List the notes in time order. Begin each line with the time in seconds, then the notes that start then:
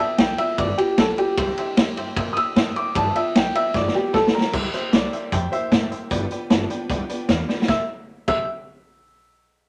Already playing: G4
0.00 F3 B3 F4 B4 D5 E5 G5
0.18 B1 F3 B3 F4 G4 B4 D5 G5, snare, ride
0.38 F3 B3 F4 G4 B4 D5 E5 G5, muted upright bass stroke, ride
0.58 G1 G2 D3 F3 B3 F4 G4 B4 D5 G5, kick, ride
0.78 F3 B3 F4 G4 B4 D5 G5, muted upright bass stroke, ride
0.98 B1 F3 B3 F4 G4 A4 B4 D5 G5, kick, snare, ride
1.17 F3 B3 F4 G4 B4 D5 G5, muted upright bass stroke, ride
1.37 C2 C3 G3 A#3 E4 G4 C5 E5 G5, kick, ride
1.57 A#3 E4 G4 C5 E5 G5, muted upright bass stroke, ride
1.76 E2 G3 A#3 E4 G4 C5 E5 G5, snare, ride
1.96 G2 A#3 E4 G4 C5 E5 G5, ride
2.17 A#2 C3 G3 A#3 E4 G4 C5 E5 G5, kick, ride
2.33 G4 D#6, muted upright bass stroke, ride
2.37 A#3 E4 C5 E5 G5 E6
2.55 A2 G3 A#3 E4 C5 E5 G5, snare, ride
2.75 A#3 E4 G4 C5 E5 G5 D6, muted upright bass stroke, ride
2.94 G1 G2 D3 F3 B3 F4 G4 B4 D5 G5 A5, kick, ride
3.14 F3 B3 F4 G4 B4 D5 E5 G5, muted upright bass stroke, ride
3.34 B1 F3 B3 F4 G4 B4 D5 G5, snare, ride
3.54 F3 B3 F4 G4 B4 D5 E5 G5, muted upright bass stroke, ride
3.74 G1 G2 D3 F3 B3 F4 G4 B4 D5 G5, kick, snare
3.88 snare
3.93 F3 B3 F4 G4 B4 D5 G5, muted upright bass stroke
4.12 B1 F3 B3 F4 G4 A4 B4 D5 G5, kick, snare
4.27 snare
4.33 F3 B3 F4 G4 A#4 B4 D5 G5, muted upright bass stroke
4.41 snare
4.53 C2 C3 G3 A#3 E4 G4 C5 E5 G5, kick, crash
4.73 A#3 E4 G4 C5 E5 G5, muted upright bass stroke, closed hi-hat
4.93 C2 C3 G3 A#3 E4 G4 C5 D5 E5 G5, snare, closed hi-hat
5.13 A#3 E4 G4 C5 E5 G5, muted upright bass stroke, closed hi-hat
5.32 F2 G3 A#3 E4 G4 C5 E5 G5, kick, closed hi-hat
5.52 A#3 E4 G4 C5 E5 G5, muted upright bass stroke, closed hi-hat
5.72 A2 C3 G3 A#3 E4 G4 C5 E5 G5, kick, snare, closed hi-hat
5.91 A#3 E4 G4 C5 E5 G5, muted upright bass stroke, closed hi-hat
6.10 G1 G2 D3 F3 B3 D4 G4 B4 D5 G5, kick, closed hi-hat
6.30 F3 B3 D4 G4 B4 D5 G5, muted upright bass stroke, closed hi-hat
6.50 G1 G2 D3 F3 B3 D4 G4 B4 D5 A5, snare, closed hi-hat
6.70 F3 B3 D4 G4 B4 D5 G5, muted upright bass stroke, closed hi-hat
6.89 C2 F3 B3 D4 G4 B4 D5 G5, kick, closed hi-hat
7.09 F3 B3 D4 G4 B4 D5 G5, muted upright bass stroke, closed hi-hat
7.29 E2 G2 D3 F3 B3 D4 G4 B4 D5 F5, kick, snare, closed hi-hat
7.49 F3 B3 D4 G4 B4 D5 G5, muted upright bass stroke, snare
7.62 snare
7.68 C2 C3 G3 A#3 E4 A4 C5 E5 G5, kick, snare
8.28 C2 C3 G3 A#3 E4 A4 C5 E5 G5, kick, crash